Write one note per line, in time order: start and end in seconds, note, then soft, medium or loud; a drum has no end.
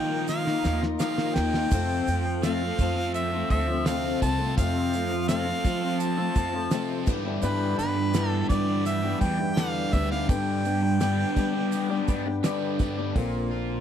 0.00 0.28 D#3 loud
0.00 0.47 D#3 medium
0.00 0.55 D#3 medium
0.00 0.50 F3 medium
0.00 0.47 A#3 medium
0.00 0.46 D#4 medium
0.00 1.69 D#4 medium
0.00 0.45 F4 medium
0.00 1.68 F4 medium
0.00 1.68 A#4 medium
0.00 1.68 D#5 medium
0.00 0.28 G5 medium
0.10 0.47 A#3 medium
0.10 0.46 D#4 medium
0.10 0.44 A#4 medium
0.28 0.82 F5 loud
0.28 snare medium
0.28 shaker medium
0.46 0.64 A#3 soft
0.46 0.65 D#4 soft
0.46 0.64 F4 soft
0.46 0.65 A#4 medium
0.46 snare medium
0.64 0.96 D#2 medium
0.64 0.82 D#3 medium
0.64 0.83 F3 medium
0.64 0.83 A#3 medium
0.64 0.83 D#4 medium
0.64 0.81 F4 medium
0.64 0.81 A#4 medium
0.64 snare medium
0.64 shaker medium
0.82 1.01 A#3 soft
0.82 1.01 D#4 soft
0.82 1.00 F4 soft
0.82 muted overdriven electric guitar stroke medium
0.82 snare medium
0.99 1.36 D#3 medium
0.99 1.35 F3 loud
0.99 1.37 A#3 medium
0.99 1.37 D#4 medium
0.99 1.37 F4 medium
0.99 1.37 A#4 loud
0.99 1.36 F5 medium
0.99 snare medium
0.99 shaker loud
1.18 snare medium
1.35 1.67 D#2 medium
1.35 1.55 D#3 medium
1.35 1.71 F3 medium
1.35 1.55 A#3 medium
1.35 1.53 A#4 medium
1.35 2.42 G5 loud
1.35 snare medium
1.35 shaker medium
1.39 1.55 D#4 medium
1.39 1.55 F4 medium
1.54 1.73 A#3 soft
1.54 1.73 D#4 soft
1.54 1.72 F4 medium
1.54 1.69 A#4 medium
1.54 snare medium
1.71 2.03 F2 loud
1.71 2.08 F2 medium
1.71 2.08 C3 medium
1.71 2.08 F3 medium
1.71 2.08 A3 medium
1.71 4.55 C4 medium
1.71 2.09 C4 medium
1.71 4.54 F4 medium
1.71 2.09 F4 loud
1.71 4.54 A4 medium
1.71 2.25 A4 loud
1.71 4.55 C5 medium
1.71 kick loud
1.71 open hi-hat medium
1.71 crash loud
1.71 shaker loud
2.07 2.70 F2 medium
2.07 2.44 F3 medium
2.07 2.44 A3 medium
2.07 2.44 C4 medium
2.07 2.44 F4 medium
2.07 open hi-hat medium
2.07 shaker medium
2.25 muted overdriven electric guitar stroke medium
2.43 2.61 F2 medium
2.43 2.61 C3 medium
2.43 2.62 F3 medium
2.43 2.62 A3 medium
2.43 2.62 C4 medium
2.43 2.61 F4 medium
2.43 2.80 A4 loud
2.43 3.11 F5 loud
2.43 snare medium
2.43 open hi-hat medium
2.43 shaker loud
2.62 2.80 F3 soft
2.62 2.80 A3 soft
2.62 2.80 C4 soft
2.62 2.79 F4 soft
2.79 3.41 F2 medium
2.79 3.33 F3 medium
2.79 3.34 A3 medium
2.79 3.34 C4 medium
2.79 2.94 A4 medium
2.79 kick medium
2.79 open hi-hat medium
2.79 shaker medium
2.83 3.33 F4 medium
2.95 3.32 C4 medium
2.95 3.31 F4 medium
2.95 3.30 A4 medium
3.14 3.47 E5 medium
3.14 open hi-hat medium
3.14 shaker loud
3.31 3.51 C4 medium
3.31 3.51 F4 medium
3.31 3.51 A4 medium
3.36 3.50 F3 soft
3.36 3.51 A3 soft
3.50 4.13 D2 medium
3.50 3.69 F3 medium
3.50 3.69 A3 medium
3.50 3.69 C4 medium
3.50 3.69 F4 medium
3.50 3.67 A4 medium
3.50 3.84 E5 loud
3.50 kick medium
3.50 open hi-hat medium
3.68 3.87 A3 soft
3.68 3.87 C4 medium
3.68 3.87 F4 medium
3.68 muted overdriven electric guitar stroke soft
3.72 3.86 F3 soft
3.86 4.22 F2 medium
3.86 4.22 C3 medium
3.86 4.21 F3 medium
3.86 4.22 A3 medium
3.86 4.23 C4 loud
3.86 4.23 F4 medium
3.86 4.23 A4 loud
3.86 4.19 F5 medium
3.86 snare loud
3.86 open hi-hat medium
3.86 shaker medium
4.22 4.53 C2 medium
4.22 4.40 F3 medium
4.22 4.40 A3 medium
4.22 4.40 C4 medium
4.22 4.39 F4 medium
4.22 4.38 A4 loud
4.22 4.55 A5 loud
4.22 kick medium
4.22 open hi-hat medium
4.22 shaker medium
4.39 4.57 F3 soft
4.39 4.57 A3 soft
4.39 4.58 C4 medium
4.39 4.58 F4 medium
4.39 4.59 A4 medium
4.57 4.93 F2 medium
4.57 5.51 F2 loud
4.57 4.94 C3 medium
4.57 4.92 F3 loud
4.57 4.94 A3 medium
4.57 7.05 C4 medium
4.57 4.94 C4 loud
4.57 7.05 F4 medium
4.57 4.94 F4 medium
4.57 7.05 A4 medium
4.57 5.10 A4 loud
4.57 7.05 C5 medium
4.57 5.25 F5 loud
4.57 kick loud
4.57 open hi-hat medium
4.57 shaker loud
4.93 5.28 F3 medium
4.93 5.28 A3 medium
4.93 5.29 C4 medium
4.93 5.29 F4 medium
4.93 open hi-hat medium
4.93 shaker medium
5.12 muted overdriven electric guitar stroke medium
5.28 5.46 F2 medium
5.28 5.47 C3 medium
5.28 5.47 F3 medium
5.28 5.46 A3 loud
5.28 5.45 C4 medium
5.28 5.45 F4 loud
5.28 5.65 A4 loud
5.28 6.02 F5 loud
5.28 snare loud
5.28 open hi-hat medium
5.28 shaker loud
5.46 5.64 F3 soft
5.46 5.65 A3 soft
5.46 5.64 C4 soft
5.46 5.64 F4 soft
5.64 6.27 F3 medium
5.64 6.18 F3 medium
5.64 6.18 A3 medium
5.64 6.17 C4 medium
5.64 6.16 F4 medium
5.64 5.80 A4 medium
5.64 kick medium
5.64 open hi-hat soft
5.64 shaker medium
5.81 6.18 C4 soft
5.81 6.17 F4 medium
5.81 6.16 A4 medium
6.00 7.08 A5 loud
6.00 open hi-hat medium
6.00 shaker loud
6.17 6.34 F3 soft
6.17 6.35 A3 soft
6.17 6.36 C4 soft
6.17 6.36 F4 soft
6.17 6.36 A4 medium
6.35 6.67 F2 medium
6.35 6.53 F3 medium
6.35 6.54 A3 medium
6.35 6.53 C4 medium
6.35 6.52 F4 medium
6.35 6.53 A4 loud
6.35 kick medium
6.35 open hi-hat medium
6.35 shaker medium
6.54 6.70 F3 soft
6.54 6.71 A3 soft
6.54 6.71 C4 soft
6.54 6.71 F4 soft
6.54 muted overdriven electric guitar stroke soft
6.71 7.07 F2 medium
6.71 7.07 C3 medium
6.71 7.06 F3 medium
6.71 7.07 A3 medium
6.71 7.08 C4 loud
6.71 7.08 F4 medium
6.71 7.06 A4 medium
6.71 snare loud
6.71 open hi-hat medium
6.71 shaker loud
7.06 7.42 G2 loud
7.06 7.38 G2 medium
7.06 7.42 D3 loud
7.06 10.26 E3 medium
7.06 7.25 E3 medium
7.06 7.25 G3 medium
7.06 7.24 B3 medium
7.06 10.26 D4 medium
7.06 7.25 D4 loud
7.06 7.24 E4 medium
7.06 10.25 G4 medium
7.06 7.24 G4 loud
7.06 10.25 B4 medium
7.06 kick loud
7.06 crash medium
7.06 shaker medium
7.25 7.41 E3 soft
7.25 7.42 G3 soft
7.25 7.42 B3 soft
7.25 7.44 D4 medium
7.25 7.42 E4 medium
7.25 7.44 G4 medium
7.42 7.78 G2 medium
7.42 7.74 G2 loud
7.42 7.79 D3 medium
7.42 7.77 E3 medium
7.42 7.78 G3 medium
7.42 7.79 B3 medium
7.42 7.97 D4 loud
7.42 7.79 E4 medium
7.42 7.96 G4 loud
7.42 7.76 B4 medium
7.42 shaker loud
7.78 8.41 G2 medium
7.78 8.13 E3 medium
7.78 8.14 G3 medium
7.78 8.14 E4 medium
7.78 8.28 B4 medium
7.78 open hi-hat medium
7.78 shaker medium
7.97 muted overdriven electric guitar stroke medium
8.13 8.50 G2 medium
8.13 8.50 D3 medium
8.13 8.48 E3 loud
8.13 8.49 G3 medium
8.13 8.50 B3 medium
8.13 8.51 D4 loud
8.13 8.51 E4 loud
8.13 8.51 G4 loud
8.13 snare loud
8.13 open hi-hat medium
8.13 shaker loud
8.28 8.46 A4 medium
8.28 snare soft
8.49 9.12 G2 medium
8.49 9.04 E3 medium
8.49 9.03 G3 medium
8.49 9.03 B3 medium
8.49 8.68 D4 medium
8.49 9.02 E4 medium
8.49 8.65 G4 medium
8.49 8.83 D5 medium
8.49 kick medium
8.49 open hi-hat medium
8.49 shaker medium
8.67 9.04 G3 soft
8.67 9.03 B3 medium
8.67 9.03 D4 medium
8.67 9.01 G4 medium
8.85 9.19 E5 loud
8.85 open hi-hat medium
8.85 shaker loud
9.03 9.20 E3 soft
9.03 9.21 G3 soft
9.03 9.22 B3 medium
9.03 9.21 D4 medium
9.03 9.21 E4 soft
9.03 9.21 G4 medium
9.21 9.84 E2 medium
9.21 9.39 E3 medium
9.21 9.39 G3 medium
9.21 9.38 B3 medium
9.21 9.39 D4 medium
9.21 9.38 E4 medium
9.21 9.37 G4 medium
9.21 9.58 G5 loud
9.21 kick medium
9.21 open hi-hat medium
9.21 shaker medium
9.39 9.57 E3 soft
9.39 9.57 G3 soft
9.39 9.58 B3 soft
9.39 9.57 E4 medium
9.39 muted overdriven electric guitar stroke medium
9.56 9.93 G2 medium
9.56 9.94 D3 medium
9.56 9.93 E3 loud
9.56 9.93 G3 medium
9.56 9.94 B3 medium
9.56 9.93 D4 loud
9.56 9.93 G4 loud
9.56 9.95 F5 loud
9.56 snare loud
9.56 open hi-hat medium
9.56 shaker medium
9.93 10.24 D2 medium
9.93 10.12 E3 medium
9.93 10.12 G3 medium
9.93 10.11 B3 medium
9.93 10.10 D4 medium
9.93 10.11 E4 medium
9.93 10.08 G4 medium
9.93 10.11 E5 loud
9.93 kick medium
9.93 open hi-hat medium
9.93 shaker medium
10.10 10.29 G3 soft
10.10 10.29 B3 medium
10.10 10.29 D4 medium
10.10 10.29 E4 medium
10.10 10.26 G4 medium
10.10 10.28 F5 loud
10.14 10.30 E3 soft
10.29 10.65 G2 medium
10.29 11.22 G2 loud
10.29 10.65 D3 medium
10.29 10.64 G3 medium
10.29 13.13 B3 medium
10.29 10.65 B3 medium
10.29 13.13 D4 medium
10.29 10.65 D4 medium
10.29 13.13 G4 medium
10.29 10.66 G4 loud
10.29 13.13 B4 medium
10.29 12.40 G5 loud
10.29 kick loud
10.29 open hi-hat medium
10.29 shaker medium
10.65 11.00 G3 medium
10.65 11.00 B3 medium
10.65 11.00 D4 medium
10.65 11.01 G4 medium
10.65 open hi-hat medium
10.65 shaker medium
10.82 muted overdriven electric guitar stroke medium
11.00 11.36 G2 medium
11.00 11.37 D3 medium
11.00 11.35 G3 medium
11.00 11.36 B3 medium
11.00 11.37 D4 medium
11.00 11.37 G4 loud
11.00 snare medium
11.00 open hi-hat medium
11.00 shaker medium
11.36 11.90 G3 medium
11.36 11.99 G3 medium
11.36 11.90 B3 medium
11.36 11.89 D4 medium
11.36 11.88 G4 medium
11.36 kick medium
11.36 open hi-hat medium
11.36 shaker medium
11.53 11.91 G3 medium
11.53 11.90 B3 medium
11.53 11.89 D4 medium
11.53 11.88 G4 medium
11.72 open hi-hat medium
11.72 shaker medium
11.89 12.06 G3 soft
11.89 12.07 B3 medium
11.89 12.08 D4 medium
11.89 12.08 G4 medium
12.07 12.40 G2 medium
12.07 12.26 G3 medium
12.07 12.26 B3 medium
12.07 12.25 D4 medium
12.07 12.24 G4 medium
12.07 kick medium
12.07 open hi-hat medium
12.07 shaker medium
12.26 12.43 G3 medium
12.26 12.43 B3 soft
12.26 12.43 D4 medium
12.26 12.44 G4 medium
12.26 muted overdriven electric guitar stroke medium
12.43 12.79 G2 medium
12.43 12.80 D3 medium
12.43 12.78 G3 medium
12.43 12.79 B3 medium
12.43 12.80 D4 loud
12.43 12.80 G4 loud
12.43 snare loud
12.43 open hi-hat medium
12.43 shaker medium
12.79 13.11 G2 medium
12.79 12.98 G3 medium
12.79 12.97 B3 medium
12.79 12.97 D4 medium
12.79 12.95 G4 medium
12.79 kick medium
12.79 open hi-hat medium
12.79 shaker medium
12.97 13.15 G3 soft
12.97 13.16 B3 medium
12.97 13.16 D4 medium
12.97 13.15 G4 medium
13.16 13.80 A#1 medium
13.16 13.51 A#2 loud
13.16 13.50 D3 medium
13.16 13.51 A#3 medium
13.16 13.51 C4 medium
13.16 13.52 F4 medium
13.16 kick loud
13.16 open hi-hat medium
13.51 13.80 D3 medium
13.51 13.80 A#3 medium
13.51 13.80 C4 medium
13.51 13.80 F4 medium